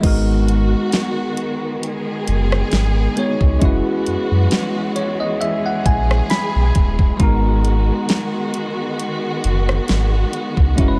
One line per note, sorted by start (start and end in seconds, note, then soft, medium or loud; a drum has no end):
0.01 0.74 G#1 loud
0.01 3.58 D#3 medium
0.01 3.11 G#3 medium
0.01 10.99 G#3 medium
0.01 3.12 B3 medium
0.01 7.16 B3 medium
0.01 3.13 D#4 medium
0.01 1.81 F#4 medium
0.01 kick loud
0.01 closed hi-hat medium
0.01 crash loud
0.05 3.14 F#4 medium
0.05 3.14 A#4 medium
0.48 closed hi-hat medium
0.92 snare loud
0.92 closed hi-hat medium
1.37 closed hi-hat medium
1.83 3.60 G#4 medium
1.83 closed hi-hat medium
2.28 2.63 F#1 loud
2.28 closed hi-hat medium
2.52 cross-stick loud
2.72 3.07 G#1 medium
2.72 snare loud
2.72 closed hi-hat medium
3.16 3.58 G#3 medium
3.16 3.61 B3 medium
3.16 3.62 D#4 medium
3.16 3.62 F#4 medium
3.16 3.63 C#5 medium
3.16 closed hi-hat medium
3.41 3.57 C#2 medium
3.41 kick loud
3.59 3.81 F#1 loud
3.59 7.16 E3 medium
3.59 7.14 G#3 medium
3.59 7.15 C#4 medium
3.59 7.16 E4 medium
3.59 5.39 F#4 medium
3.59 kick loud
3.59 closed hi-hat medium
3.63 7.17 F#4 medium
3.63 7.18 B4 medium
4.06 4.16 F#2 soft
4.06 closed hi-hat medium
4.31 4.47 F#2 loud
4.51 snare loud
4.51 closed hi-hat medium
4.96 5.18 C#5 medium
4.96 closed hi-hat medium
5.20 5.39 D#5 medium
5.40 7.18 G#4 medium
5.40 5.63 E5 medium
5.40 closed hi-hat medium
5.66 5.84 F#5 medium
5.86 6.21 A#1 medium
5.86 6.27 G#5 medium
5.86 kick loud
5.86 closed hi-hat medium
6.11 cross-stick loud
6.30 7.16 B5 medium
6.30 snare loud
6.30 closed hi-hat medium
6.55 6.71 B1 loud
6.75 7.11 D#1 medium
6.75 kick medium
6.75 closed hi-hat medium
6.99 kick medium
7.17 7.91 G#1 loud
7.17 10.74 D#3 medium
7.17 10.73 G#3 medium
7.17 10.73 B3 medium
7.17 10.99 B3 medium
7.17 10.74 D#4 medium
7.17 10.99 F#4 medium
7.17 kick loud
7.17 closed hi-hat medium
7.22 10.75 F#4 medium
7.22 10.76 A#4 medium
7.65 closed hi-hat medium
8.09 snare loud
8.09 closed hi-hat medium
8.54 closed hi-hat medium
9.00 closed hi-hat medium
9.44 9.79 F#1 loud
9.44 closed hi-hat medium
9.69 cross-stick loud
9.88 10.24 G#1 loud
9.88 snare loud
9.88 closed hi-hat medium
10.33 closed hi-hat medium
10.57 10.74 C#2 medium
10.57 kick medium
10.76 10.97 F#1 loud
10.76 10.99 E3 medium
10.76 10.99 G#3 medium
10.76 10.99 C#4 medium
10.76 10.99 E4 medium
10.76 kick loud
10.76 closed hi-hat medium
10.80 10.99 F#4 medium
10.80 10.87 A#4 medium
10.88 10.99 B4 medium